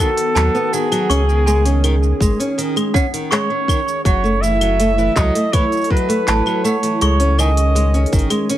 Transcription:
Already playing: D#3 B3 F#4
0.00 A4, shaker
0.17 open hi-hat, shaker
0.35 D#2 F#3 A5, clap, open hi-hat, shaker
0.55 B3, shaker
0.73 D#3 G#4 F#5, shaker
0.92 F#3, open hi-hat, claves, shaker
1.09 C#2 C#4 G#4 C#6, open hi-hat, shaker
1.29 D#3, shaker
1.46 G#3 G#5, shaker
1.65 C#4, open hi-hat, shaker
1.84 D#3, open hi-hat, claves, shaker
2.03 shaker
2.21 G#1 G#3, kick, shaker
2.40 C#4, open hi-hat, shaker
2.58 D#3, open hi-hat, shaker
2.76 G#3, open hi-hat, claves, shaker
2.94 C#4 F#5, kick, shaker
3.14 D#3, open hi-hat, shaker
3.31 G#3 C#5 C#6, clap, open hi-hat, shaker
3.50 C#4
3.68 D#3, kick, claves, shaker
3.88 shaker
4.04 F#1 F#3 E4 A4 C#5 F#5, kick, open hi-hat, shaker
4.24 A3, shaker
4.42 E3 E5, shaker
4.61 F#3, open hi-hat, claves, shaker
4.80 A3, open hi-hat, shaker
4.98 E3, shaker
5.16 C#2 F#3 D#5, kick, clap, shaker
5.35 A3, open hi-hat, shaker
5.53 E3 C#5, kick, open hi-hat, claves, shaker
5.72 open hi-hat, shaker
5.77 shaker
5.81 open hi-hat, shaker
5.86 shaker
5.90 F#3 B4, kick
5.97 open hi-hat
6.09 A3, open hi-hat, shaker
6.27 A1 E3 A5, clap, open hi-hat, shaker
6.46 F#3, claves, shaker
6.64 A3 C#5 F#5, shaker
6.83 E3, open hi-hat, shaker
7.00 C#2 D#3 G#3 C#4 G#4 C#5 C#6, open hi-hat, shaker
7.20 C#4, open hi-hat, shaker
7.38 D#3 D#5 G#5, claves, shaker
7.57 open hi-hat, shaker
7.75 G#3, open hi-hat, shaker
7.94 C#4, open hi-hat, shaker
8.06 open hi-hat
8.12 G#1 D#3, kick, shaker
8.19 open hi-hat
8.30 G#3, open hi-hat, claves, shaker
8.50 C#4, open hi-hat, shaker

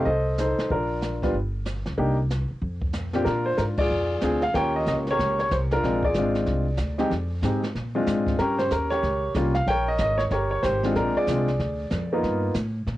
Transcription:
0.05 C2 A4 C5 D#5, brush sweep, kick
0.38 D#4 A4 C5, snare, hi-hat pedal
0.58 muted upright bass stroke, snare
0.70 A#1 D4 F4 A#4, brush sweep, kick
1.02 snare, hi-hat pedal
1.22 G3 B3 D4 F4, kick, snare
1.34 G1, brush sweep, kick
1.65 snare, hi-hat pedal
1.86 C#2, snare
1.98 C2 A#3 D4 D#4 G4, brush sweep, kick
2.30 snare, hi-hat pedal
2.51 muted upright bass stroke
2.62 F2, brush sweep, kick
2.82 kick
2.93 snare, hi-hat pedal
3.13 A#2 C4 D4 F4 G4, snare
3.25 A#2 D4 F4 A#4, brush sweep, kick, snare
3.46 C5
3.58 G#2 A#4, kick, snare, hi-hat pedal
3.78 F4 G#4 D5, kick, ride
3.91 F2, brush sweep
4.21 D2 C4 D4 F4 G#4, kick, snare, hi-hat pedal
4.42 F5, snare
4.54 D#2 A#3 C#4 F4 G4 A#4 C#5 G5, brush sweep, kick, snare
4.76 D#5
4.86 C#2 D#5, kick, snare, hi-hat pedal
5.07 C#5, snare
5.11 G4 A#4
5.19 C#2, brush sweep, kick, snare
5.39 C#5, snare
5.51 C2 C5, kick, snare, hi-hat pedal
5.71 D4 F4 A#4, snare
5.83 A#1 G#3 C4 D4 F4, brush sweep, kick, snare
6.03 F4 G#4 D5, kick
6.14 G#1 G#3 C4 D4 F4, kick, snare, hi-hat pedal
6.35 snare
6.46 C2, brush sweep, kick, snare
6.77 D2, kick, snare, hi-hat pedal
6.98 G#3 C4 D#4 G4, snare
7.10 F2, brush sweep, kick, snare
7.42 G#2 G#3 C4 D#4 G4, kick, snare, hi-hat pedal
7.63 snare
7.75 A#2, brush sweep, kick, snare
7.95 G#3 C4 D4 F4
8.07 G#2, kick, snare, hi-hat pedal
8.27 kick, snare
8.39 G2 C#4 G4 A#4, brush sweep, kick, snare
8.58 C5, snare
8.71 D#2 A#4, kick, snare, hi-hat pedal
8.90 G4 A#4 C#5, snare
9.03 C#2, brush sweep, kick, snare
9.34 C2 G3 A#3 C#4 F4, kick, snare, hi-hat pedal
9.55 F5, snare
9.67 A#1 A#4 C#5 G5, brush sweep, kick, snare
9.88 D#5
9.98 G#1 D#5, kick, snare, hi-hat pedal
10.18 C#5, snare
10.31 G1 G4 A#4 C#5, brush sweep, kick, snare
10.51 C#5
10.63 G#1 G4 C5, kick, snare, hi-hat pedal
10.83 G#3 C4 D4 F4, snare
10.95 A#1 D4 F4 A#4, brush sweep, kick, snare
11.16 F4 G#4 D5, muted upright bass stroke
11.27 C2 G#3 C4 D4 F4, kick, snare, hi-hat pedal
11.48 snare
11.60 D2, brush sweep, kick, snare
11.91 F2, kick, snare, hi-hat pedal
12.13 A#3 B3 D#4 F4
12.23 G2, brush sweep, kick, snare
12.54 A2, kick, snare, hi-hat pedal
12.87 A#2, brush sweep, kick, snare

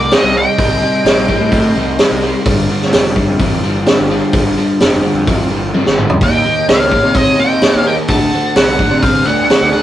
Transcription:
Already playing: C4 D#4 A#4 C5 D5
0.11 C3 G3 C5 D#5, snare, open hi-hat
0.23 C2
0.33 C3 G3 D#5
0.37 G5
0.58 C2 C3 G3, kick, open hi-hat
0.82 C3 G3
1.05 A#1 C3 G3, snare, open hi-hat
1.29 C3 G3, kick
1.40 A2
1.52 C3 A3, kick, open hi-hat
1.75 C2 C3 A3
1.99 C3 G3, snare, open hi-hat
2.11 C2
2.22 C3 G3
2.46 G1 G2 D3 A#3 F4 G4 A4, kick, open hi-hat
2.70 G2 D3
2.82 snare
2.93 F1 G2 D3, snare, open hi-hat
3.16 G2 D3, kick
3.29 F2
3.40 G2 E3, kick, open hi-hat
3.63 G1 G2 E3
3.86 G2 D3, snare, open hi-hat
3.98 G1
4.10 G2 D3
4.33 G1 G2 D3, kick, open hi-hat
4.57 G2 D3
4.80 F1 G2 D3, snare, open hi-hat
5.04 G2 D3
5.14 F2
5.27 G2 E3, kick, open hi-hat
5.50 G1 G2 E3
5.74 G2 D3, high tom
5.86 G1, snare
5.98 G2 D3, mid tom
6.10 floor tom
6.20 D#2 D#3 A#3 D#4 G4 A#4 C#5 D#5 G5, kick, open hi-hat
6.45 D#3 A#3
6.68 C#2 D#3 A#3 C#5 F5, snare, open hi-hat
6.92 D#3 A#3, kick
7.03 C3
7.15 D#3 C4 C#5 D#5, kick, open hi-hat
7.38 D#2 D#3 C4 D#5 G5
7.62 D#3 A#3, snare, open hi-hat
7.74 D#2
7.86 D#3 A#3 D#5 G5
8.08 D2 D3 A3 D4 D#4 F#4 C5 F#5 A5, kick, open hi-hat
8.34 D3 A3
8.56 C2 D3 A3 D5 F#5, snare, open hi-hat
8.79 D3 A3, kick
8.91 C3
9.02 D3 B3 C5 F5, kick, open hi-hat
9.26 D2 D3 B3 D5 F#5
9.49 D3 A3, snare, open hi-hat
9.61 D2
9.73 D3 A3 D5 F#5

